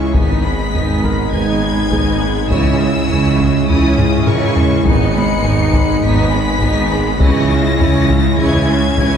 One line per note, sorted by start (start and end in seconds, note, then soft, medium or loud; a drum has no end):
0.00 0.17 C#2 medium
0.00 0.11 G#3 medium
0.00 0.12 G#3 medium
0.00 0.16 G#3 medium
0.00 0.16 C#4 medium
0.00 0.41 C#4 soft
0.00 0.15 E4 medium
0.00 0.16 E4 medium
0.00 0.11 G#4 medium
0.00 0.15 G#4 medium
0.00 0.16 C#5 medium
0.00 0.40 C#5 medium
0.00 0.16 E5 medium
0.00 0.15 C#6 medium
0.15 0.67 G#1 medium
0.15 2.52 G#1 medium
0.15 0.67 G#1 medium
0.15 0.68 G#2 medium
0.15 4.82 G#3 medium
0.15 0.43 B3 medium
0.15 0.43 D#4 medium
0.15 2.47 D#4 medium
0.15 2.51 D#4 medium
0.15 4.82 G#4 medium
0.15 0.43 B4 medium
0.15 2.51 D#5 medium
0.15 0.43 G#5 medium
0.15 1.31 B6 loud
0.15 taiko loud
0.44 0.74 G#3 medium
0.44 0.73 B3 medium
0.44 0.74 G#4 medium
0.44 0.74 B5 medium
0.73 1.26 G#1 medium
0.73 1.26 G#2 medium
0.73 1.03 B3 medium
0.73 1.04 D#4 medium
0.73 1.03 B4 medium
0.73 1.03 G#5 medium
0.73 taiko low medium
1.03 1.33 G#3 medium
1.03 1.32 B3 medium
1.03 1.33 G#4 medium
1.03 2.77 A#4 medium
1.03 1.33 B5 medium
1.03 taiko medium
1.32 1.85 G#1 medium
1.32 1.85 G#2 medium
1.32 1.61 B3 medium
1.32 1.61 D#4 medium
1.32 1.61 B4 medium
1.32 1.61 G#5 medium
1.32 2.48 G#6 loud
1.32 taiko low medium
1.63 1.92 G#3 medium
1.63 1.91 B3 medium
1.63 1.92 G#4 medium
1.63 1.92 B5 medium
1.91 2.44 G#1 medium
1.91 2.44 G#2 medium
1.91 3.64 G#3 soft
1.91 2.21 B3 medium
1.91 2.22 D#4 medium
1.91 3.64 G#4 medium
1.91 2.21 B4 medium
1.91 2.21 G#5 medium
1.91 taiko medium
2.21 2.51 G#3 medium
2.21 2.51 B3 medium
2.21 2.51 G#4 medium
2.21 2.51 B5 medium
2.49 4.88 C#2 medium
2.49 2.95 C#2 medium
2.49 3.03 C#2 medium
2.49 3.03 C#3 medium
2.49 2.78 E3 medium
2.49 4.86 E4 medium
2.49 2.78 E4 medium
2.49 4.82 E4 medium
2.49 2.77 C#5 medium
2.49 4.86 C#5 medium
2.49 4.24 C#5 medium
2.49 2.77 G#5 medium
2.49 3.65 E6 loud
2.49 taiko loud
2.79 3.10 G#3 medium
2.79 3.10 C#4 medium
2.79 3.09 G#4 medium
2.79 3.09 E5 medium
3.08 3.62 C#2 medium
3.08 3.62 C#3 medium
3.08 3.39 E3 medium
3.08 3.39 E4 medium
3.08 3.38 C#5 medium
3.08 3.38 G#5 medium
3.08 taiko low medium
3.38 3.69 G#3 medium
3.38 3.69 C#4 medium
3.38 3.68 G#4 medium
3.38 3.68 E5 medium
3.38 taiko medium
3.68 4.20 C#2 loud
3.68 4.21 C#2 medium
3.68 4.20 C#3 medium
3.68 3.96 E3 medium
3.68 3.96 E4 medium
3.68 3.96 C#5 medium
3.68 3.96 G#5 medium
3.68 4.26 D#6 loud
3.68 taiko low medium
3.97 4.27 G#3 medium
3.97 4.27 C#4 medium
3.97 4.27 G#4 medium
3.97 4.27 E5 medium
3.97 taiko low-mid medium
4.27 4.79 C#2 medium
4.27 4.80 C#2 medium
4.27 4.80 C#3 medium
4.27 4.57 E3 medium
4.27 4.57 E4 medium
4.27 6.00 A#4 medium
4.27 4.56 C#5 medium
4.27 4.56 G#5 medium
4.27 4.87 C#6 loud
4.27 taiko low-mid medium
4.56 4.86 G#3 medium
4.56 4.86 C#4 medium
4.56 4.86 G#4 medium
4.56 4.86 E5 medium
4.56 taiko low medium
4.85 5.38 G#1 loud
4.85 7.23 G#1 medium
4.85 5.38 G#1 medium
4.85 5.38 G#2 loud
4.85 9.17 G#3 medium
4.85 5.14 B3 medium
4.85 7.03 D#4 medium
4.85 7.21 D#4 medium
4.85 5.14 D#4 medium
4.85 9.17 G#4 medium
4.85 5.13 B4 medium
4.85 7.21 D#5 medium
4.85 5.13 G#5 medium
4.85 6.02 C#7 loud
4.85 taiko loud
5.15 5.45 G#3 medium
5.15 5.44 B3 medium
5.15 5.45 G#4 medium
5.15 5.45 B5 medium
5.44 5.97 G#1 medium
5.44 5.97 G#1 loud
5.44 5.97 G#2 medium
5.44 5.74 B3 medium
5.44 5.74 D#4 medium
5.44 5.74 B4 medium
5.44 5.74 G#5 medium
5.44 taiko low medium
5.73 6.04 G#3 medium
5.73 6.03 B3 medium
5.73 6.03 G#4 medium
5.73 6.03 B5 medium
5.73 taiko medium
6.03 6.56 G#1 loud
6.03 6.56 G#2 loud
6.03 6.32 B3 medium
6.03 6.31 D#4 medium
6.03 6.31 B4 medium
6.03 6.31 G#5 medium
6.03 7.21 B6 loud
6.03 taiko low medium
6.32 6.63 G#3 medium
6.32 6.61 B3 medium
6.32 6.62 G#4 medium
6.32 6.62 B5 medium
6.61 7.15 G#1 loud
6.61 7.15 G#2 loud
6.61 6.91 B3 medium
6.61 6.92 D#4 medium
6.61 6.91 B4 medium
6.61 6.91 G#5 medium
6.61 taiko medium
6.90 7.22 G#3 medium
6.90 7.21 B3 medium
6.90 7.21 G#4 medium
6.90 7.20 B5 medium
7.20 7.73 C#2 medium
7.20 7.73 C#2 loud
7.20 9.17 C#2 medium
7.20 7.73 C#3 medium
7.20 7.49 E3 medium
7.20 9.17 E4 medium
7.20 7.49 E4 medium
7.20 7.48 C#5 medium
7.20 9.17 C#5 medium
7.20 7.48 G#5 medium
7.20 8.36 A#6 loud
7.20 taiko loud
7.51 7.80 G#3 medium
7.51 7.80 C#4 medium
7.51 7.80 G#4 medium
7.51 7.80 E5 medium
7.79 8.32 C#2 medium
7.79 8.32 C#2 loud
7.79 8.32 C#3 medium
7.79 8.10 E3 medium
7.79 9.17 C#4 medium
7.79 8.10 E4 medium
7.79 9.17 C#5 medium
7.79 8.10 C#5 medium
7.79 8.10 G#5 medium
7.79 taiko low medium
8.09 8.39 G#3 medium
8.09 8.39 C#4 medium
8.09 8.39 G#4 medium
8.09 8.39 E5 medium
8.09 taiko medium
8.39 8.91 C#2 medium
8.39 8.91 C#3 loud
8.39 8.67 E3 medium
8.39 8.67 E4 medium
8.39 8.66 C#5 medium
8.39 8.67 G#5 medium
8.39 9.17 G#6 loud
8.39 taiko low medium
8.68 8.98 G#3 medium
8.68 8.98 C#4 medium
8.68 8.98 G#4 medium
8.68 8.98 E5 medium
8.98 9.17 C#2 medium
8.98 9.17 C#3 medium
8.98 9.17 E3 medium
8.98 9.17 E4 medium
8.98 9.17 C#5 medium
8.98 9.17 G#5 medium
8.98 taiko medium